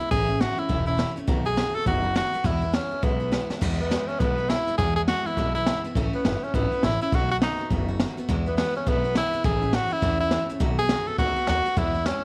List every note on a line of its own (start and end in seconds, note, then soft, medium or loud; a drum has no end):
0.00 0.10 E3 soft
0.00 0.11 G#3 soft
0.00 0.11 B3 soft
0.00 0.10 E4 medium
0.00 0.11 E4 medium
0.00 closed hi-hat medium
0.11 0.44 A1 medium
0.11 0.29 A2 medium
0.11 0.29 E3 medium
0.11 0.29 A3 medium
0.11 0.28 C#4 loud
0.11 0.27 E4 medium
0.11 0.42 G#4 loud
0.11 kick loud
0.11 closed hi-hat medium
0.28 0.40 A3 soft
0.28 0.40 C#4 soft
0.28 0.40 E4 medium
0.40 0.58 E3 medium
0.40 0.56 E4 medium
0.40 0.60 F#4 medium
0.40 snare loud
0.40 closed hi-hat medium
0.58 0.68 A3 soft
0.58 0.69 C#4 soft
0.58 0.69 E4 medium
0.58 0.86 E4 loud
0.58 muted upright bass stroke medium
0.69 1.02 E1 medium
0.69 0.87 A2 medium
0.69 0.87 E3 medium
0.69 0.87 A3 medium
0.69 0.86 C#4 medium
0.69 0.85 E4 medium
0.69 kick loud
0.69 closed hi-hat medium
0.86 0.97 A3 soft
0.86 0.97 C#4 medium
0.86 0.98 E4 medium
0.86 1.14 E4 medium
0.97 1.16 E3 medium
0.97 1.16 A3 medium
0.97 1.16 C#4 medium
0.97 1.15 E4 medium
0.97 snare medium
0.97 closed hi-hat medium
1.16 1.27 A3 soft
1.16 1.28 C#4 soft
1.16 1.28 E4 medium
1.16 muted upright bass stroke medium
1.16 closed hi-hat medium
1.27 1.61 B1 medium
1.27 1.45 B2 medium
1.27 1.46 D#3 loud
1.27 1.46 A3 medium
1.27 1.45 B3 loud
1.27 1.44 F#4 medium
1.27 kick loud
1.27 closed hi-hat medium
1.45 1.56 A3 soft
1.45 1.57 B3 soft
1.45 1.57 F#4 medium
1.45 1.77 G#4 loud
1.56 1.75 D#3 medium
1.56 1.75 A3 medium
1.56 1.74 B3 medium
1.56 1.73 F#4 medium
1.56 snare loud
1.56 closed hi-hat medium
1.74 1.86 A3 soft
1.74 1.86 B3 soft
1.74 1.86 F#4 medium
1.74 1.86 A4 loud
1.74 muted upright bass stroke medium
1.86 2.19 F#1 medium
1.86 2.04 B2 medium
1.86 2.04 D#3 medium
1.86 2.04 A3 medium
1.86 2.03 B3 medium
1.86 2.02 F#4 medium
1.86 2.14 F#4 medium
1.86 kick medium
1.86 closed hi-hat medium
2.03 2.14 A3 soft
2.03 2.15 B3 medium
2.03 2.15 F#4 medium
2.15 2.33 D#3 medium
2.15 2.33 A3 medium
2.15 2.33 B3 medium
2.15 2.47 F#4 loud
2.15 2.32 F#4 medium
2.15 snare loud
2.15 closed hi-hat medium
2.33 2.45 A3 soft
2.33 2.44 B3 medium
2.33 2.45 F#4 medium
2.33 muted upright bass stroke medium
2.33 closed hi-hat medium
2.44 2.62 E2 medium
2.44 2.78 E2 medium
2.44 2.63 B2 medium
2.44 2.63 E3 medium
2.44 2.62 G#3 medium
2.44 2.61 B3 medium
2.44 2.76 E4 medium
2.44 2.61 E4 medium
2.44 kick loud
2.44 closed hi-hat medium
2.62 2.72 E3 medium
2.62 2.72 G#3 medium
2.62 2.73 B3 medium
2.62 2.74 E4 soft
2.73 2.91 E3 medium
2.73 2.91 G#3 medium
2.73 2.91 B3 medium
2.73 3.05 C#4 medium
2.73 2.90 E4 medium
2.73 snare loud
2.73 closed hi-hat medium
2.91 3.02 E3 soft
2.91 3.02 G#3 soft
2.91 3.03 B3 medium
2.91 3.02 E4 soft
2.91 muted upright bass stroke medium
3.02 3.36 B1 medium
3.02 3.21 E2 medium
3.02 3.21 B2 medium
3.02 3.21 E3 medium
3.02 3.20 G#3 medium
3.02 3.20 B3 medium
3.02 3.51 B3 medium
3.02 3.19 E4 medium
3.02 kick loud
3.02 closed hi-hat medium
3.20 3.30 E3 soft
3.20 3.31 G#3 soft
3.20 3.31 B3 soft
3.20 3.32 E4 medium
3.31 3.50 E3 medium
3.31 3.50 G#3 medium
3.31 3.49 B3 medium
3.31 3.49 E4 medium
3.31 snare loud
3.31 closed hi-hat medium
3.49 3.61 E3 soft
3.49 3.61 G#3 medium
3.49 3.61 B3 medium
3.49 3.61 E4 medium
3.49 muted upright bass stroke medium
3.49 snare medium
3.61 3.79 E2 medium
3.61 3.95 E2 medium
3.61 3.79 B2 medium
3.61 3.79 E3 medium
3.61 3.79 G#3 medium
3.61 3.78 B3 medium
3.61 3.77 E4 loud
3.61 kick loud
3.61 crash loud
3.78 3.89 E3 soft
3.78 3.90 G#3 soft
3.78 3.90 B3 medium
3.78 4.10 B3 medium
3.78 3.90 E4 medium
3.90 4.08 E3 medium
3.90 4.09 G#3 medium
3.90 4.08 B3 medium
3.90 4.07 E4 medium
3.90 snare loud
3.90 closed hi-hat medium
4.08 4.19 E3 soft
4.08 4.20 G#3 soft
4.08 4.20 B3 medium
4.08 4.21 C#4 medium
4.08 4.20 E4 medium
4.08 muted upright bass stroke medium
4.20 4.53 B1 medium
4.20 4.38 E2 medium
4.20 4.38 B2 medium
4.20 4.38 E3 medium
4.20 4.38 G#3 medium
4.20 4.51 B3 medium
4.20 4.37 B3 medium
4.20 4.37 E4 medium
4.20 kick loud
4.20 closed hi-hat medium
4.38 4.48 E3 soft
4.38 4.49 G#3 medium
4.38 4.50 B3 soft
4.38 4.49 E4 medium
4.49 4.67 E3 medium
4.49 4.68 G#3 medium
4.49 4.66 B3 medium
4.49 4.77 E4 medium
4.49 4.66 E4 medium
4.49 snare loud
4.49 closed hi-hat medium
4.67 4.78 E3 soft
4.67 4.78 G#3 soft
4.67 4.78 B3 medium
4.67 4.78 E4 medium
4.67 muted upright bass stroke medium
4.67 closed hi-hat medium
4.78 4.96 E2 medium
4.78 5.12 E2 medium
4.78 4.96 B2 medium
4.78 4.97 E3 medium
4.78 4.97 G#3 medium
4.78 4.96 B3 medium
4.78 4.95 E4 loud
4.78 4.95 G#4 loud
4.78 kick loud
4.78 closed hi-hat medium
4.96 5.06 E3 soft
4.96 5.07 G#3 soft
4.96 5.08 B3 medium
4.96 5.08 E4 soft
4.96 5.01 G#4 loud
5.08 5.25 E3 medium
5.08 5.26 G#3 medium
5.08 5.25 B3 medium
5.08 5.25 E4 medium
5.08 5.27 F#4 loud
5.08 snare loud
5.08 closed hi-hat medium
5.25 5.37 E3 soft
5.25 5.37 G#3 medium
5.25 5.37 B3 soft
5.25 5.54 E4 medium
5.25 5.37 E4 soft
5.25 muted upright bass stroke medium
5.37 5.70 B1 medium
5.37 5.55 E2 medium
5.37 5.55 B2 medium
5.37 5.55 E3 medium
5.37 5.55 G#3 medium
5.37 5.55 B3 medium
5.37 5.54 E4 medium
5.37 kick medium
5.37 closed hi-hat medium
5.55 5.65 E3 soft
5.55 5.66 G#3 soft
5.55 5.67 B3 medium
5.55 5.82 E4 medium
5.55 5.66 E4 medium
5.66 5.84 E3 medium
5.66 5.85 G#3 medium
5.66 5.84 B3 medium
5.66 5.84 E4 medium
5.66 snare loud
5.66 closed hi-hat medium
5.84 5.95 E3 medium
5.84 5.96 G#3 soft
5.84 5.96 B3 medium
5.84 5.96 E4 medium
5.84 muted upright bass stroke medium
5.84 closed hi-hat medium
5.95 6.08 A1 loud
5.95 6.13 A2 medium
5.95 6.14 E3 medium
5.95 6.14 A3 loud
5.95 6.13 C#4 loud
5.95 6.12 E4 loud
5.95 kick loud
5.95 closed hi-hat medium
6.13 6.24 A3 soft
6.13 6.46 B3 medium
6.13 6.25 C#4 soft
6.13 6.25 E4 soft
6.24 6.40 F#1 medium
6.24 6.42 E3 medium
6.24 6.43 A3 medium
6.24 6.43 C#4 medium
6.24 6.42 E4 medium
6.24 snare loud
6.24 closed hi-hat medium
6.43 6.53 A3 soft
6.43 6.56 C#4 medium
6.43 6.54 C#4 medium
6.43 6.54 E4 soft
6.54 6.69 G#1 medium
6.54 6.72 A2 medium
6.54 6.72 E3 medium
6.54 6.72 A3 medium
6.54 6.86 B3 medium
6.54 6.72 C#4 medium
6.54 6.71 E4 loud
6.54 kick loud
6.54 closed hi-hat medium
6.72 6.83 A3 soft
6.72 6.83 C#4 soft
6.72 6.83 E4 medium
6.72 muted upright bass stroke medium
6.83 6.98 A1 medium
6.83 7.01 E3 medium
6.83 7.01 A3 medium
6.83 7.01 C#4 medium
6.83 7.01 E4 loud
6.83 7.00 E4 medium
6.83 snare loud
6.83 closed hi-hat medium
7.01 7.12 A3 soft
7.01 7.13 C#4 medium
7.01 7.12 E4 medium
7.01 7.16 E4 medium
7.01 closed hi-hat medium
7.12 7.45 B1 medium
7.12 7.30 B2 medium
7.12 7.30 D#3 medium
7.12 7.30 A3 medium
7.12 7.30 B3 loud
7.12 7.29 F#4 medium
7.12 7.31 F#4 medium
7.12 kick loud
7.12 closed hi-hat medium
7.30 7.41 A3 soft
7.30 7.42 B3 soft
7.30 7.41 F#4 medium
7.30 7.36 F#4 loud
7.42 7.59 D#3 medium
7.42 7.59 A3 medium
7.42 7.58 B3 medium
7.42 7.69 D#4 medium
7.42 7.57 F#4 medium
7.42 snare loud
7.42 closed hi-hat medium
7.58 7.70 A3 soft
7.58 7.70 B3 soft
7.58 7.70 F#4 medium
7.58 muted upright bass stroke medium
7.70 8.03 F#1 medium
7.70 7.88 B2 medium
7.70 7.88 D#3 medium
7.70 7.88 A3 medium
7.70 7.88 B3 medium
7.70 7.87 F#4 medium
7.70 kick loud
7.70 closed hi-hat medium
7.88 7.99 A3 soft
7.88 8.00 B3 medium
7.88 7.99 F#4 medium
8.00 8.17 D#3 medium
8.00 8.18 A3 medium
8.00 8.17 B3 medium
8.00 8.16 F#4 medium
8.00 snare loud
8.00 closed hi-hat medium
8.17 8.29 A3 soft
8.17 8.29 B3 medium
8.17 8.28 F#4 medium
8.17 muted upright bass stroke medium
8.17 closed hi-hat medium
8.28 8.46 E2 loud
8.28 8.61 E2 medium
8.28 8.46 B2 medium
8.28 8.47 E3 loud
8.28 8.46 G#3 loud
8.28 8.46 B3 medium
8.28 8.45 E4 medium
8.28 kick loud
8.28 closed hi-hat medium
8.46 8.56 E3 soft
8.46 8.57 G#3 soft
8.46 8.57 B3 medium
8.46 8.57 E4 medium
8.57 8.75 E3 medium
8.57 8.76 G#3 medium
8.57 8.74 B3 medium
8.57 8.75 B3 medium
8.57 8.74 E4 medium
8.57 snare loud
8.57 closed hi-hat medium
8.75 8.85 E3 soft
8.75 8.86 G#3 soft
8.75 8.86 B3 soft
8.75 8.90 C#4 medium
8.75 8.86 E4 medium
8.75 muted upright bass stroke medium
8.86 9.20 B1 medium
8.86 9.04 E2 medium
8.86 9.04 B2 medium
8.86 9.04 E3 medium
8.86 9.04 G#3 medium
8.86 9.04 B3 medium
8.86 9.16 B3 medium
8.86 9.03 E4 medium
8.86 kick medium
8.86 closed hi-hat medium
9.04 9.15 E3 soft
9.04 9.15 G#3 soft
9.04 9.16 B3 medium
9.04 9.15 E4 medium
9.15 9.33 E3 medium
9.15 9.33 G#3 medium
9.15 9.33 B3 medium
9.15 9.44 E4 loud
9.15 9.31 E4 medium
9.15 snare loud
9.15 closed hi-hat medium
9.33 9.43 E3 soft
9.33 9.44 G#3 medium
9.33 9.45 B3 medium
9.33 9.44 E4 medium
9.33 muted upright bass stroke medium
9.33 closed hi-hat medium
9.44 9.77 A1 medium
9.44 9.62 A2 medium
9.44 9.62 E3 medium
9.44 9.62 A3 medium
9.44 9.61 C#4 medium
9.44 9.60 E4 medium
9.44 9.77 G#4 medium
9.44 kick loud
9.44 closed hi-hat medium
9.61 9.72 A3 soft
9.61 9.73 C#4 medium
9.61 9.73 E4 medium
9.73 9.91 E3 medium
9.73 9.91 A3 medium
9.73 9.90 C#4 medium
9.73 9.89 E4 medium
9.73 9.94 F#4 loud
9.73 snare loud
9.73 closed hi-hat medium
9.90 10.01 A3 soft
9.90 10.02 C#4 soft
9.90 10.02 E4 medium
9.90 10.20 E4 loud
9.90 muted upright bass stroke medium
10.02 10.35 E2 medium
10.02 10.20 A2 medium
10.02 10.20 E3 medium
10.02 10.20 A3 medium
10.02 10.19 C#4 medium
10.02 10.18 E4 medium
10.02 kick loud
10.02 closed hi-hat medium
10.19 10.30 A3 soft
10.19 10.31 C#4 soft
10.19 10.31 E4 medium
10.19 10.47 E4 medium
10.31 10.49 E3 medium
10.31 10.50 A3 medium
10.31 10.49 C#4 medium
10.31 10.48 E4 medium
10.31 snare loud
10.31 closed hi-hat medium
10.49 10.59 A3 soft
10.49 10.61 C#4 soft
10.49 10.61 E4 medium
10.49 muted upright bass stroke medium
10.49 closed hi-hat medium
10.60 10.93 B1 medium
10.60 10.78 B2 loud
10.60 10.79 D#3 medium
10.60 10.79 A3 loud
10.60 10.78 B3 medium
10.60 10.77 F#4 loud
10.60 kick loud
10.60 closed hi-hat medium
10.78 10.89 A3 soft
10.78 10.89 B3 medium
10.78 11.09 G#4 loud
10.89 11.07 D#3 medium
10.89 11.08 A3 medium
10.89 11.07 B3 medium
10.89 11.06 F#4 medium
10.89 snare loud
10.89 closed hi-hat medium
11.07 11.18 A3 soft
11.07 11.19 B3 soft
11.07 11.19 F#4 medium
11.07 11.18 A4 loud
11.07 muted upright bass stroke medium
11.18 11.34 C#2 medium
11.18 11.37 B2 medium
11.18 11.37 D#3 medium
11.18 11.37 A3 medium
11.18 11.36 B3 medium
11.18 11.46 F#4 loud
11.18 11.35 F#4 medium
11.18 kick loud
11.18 closed hi-hat soft
11.36 11.47 A3 soft
11.36 11.48 B3 medium
11.36 11.48 F#4 medium
11.47 11.63 D#2 medium
11.47 11.65 D#3 medium
11.47 11.66 A3 medium
11.47 11.66 B3 medium
11.47 11.79 F#4 loud
11.47 11.65 F#4 medium
11.47 snare loud
11.47 closed hi-hat medium
11.65 11.77 A3 soft
11.65 11.77 B3 medium
11.65 11.77 F#4 medium
11.65 muted upright bass stroke medium
11.65 closed hi-hat medium
11.76 11.95 E2 medium
11.76 12.10 E2 medium
11.76 11.95 B2 medium
11.76 11.95 E3 medium
11.76 11.94 G#3 medium
11.76 11.94 B3 medium
11.76 12.08 E4 medium
11.76 11.93 E4 medium
11.76 kick loud
11.76 closed hi-hat medium
11.94 12.05 E3 soft
11.94 12.06 G#3 soft
11.94 12.06 B3 medium
11.94 12.06 E4 medium
12.06 12.24 E3 medium
12.06 12.24 G#3 medium
12.06 12.23 B3 medium
12.06 12.24 C#4 loud
12.06 12.22 E4 medium
12.06 snare loud
12.06 closed hi-hat medium